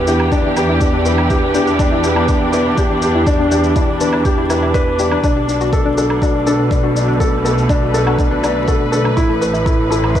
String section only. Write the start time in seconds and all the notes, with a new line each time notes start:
Already playing: E3 B3 D4 G4
5.24 B2
5.47 A3
6.40 B4
9.17 A2
9.78 C4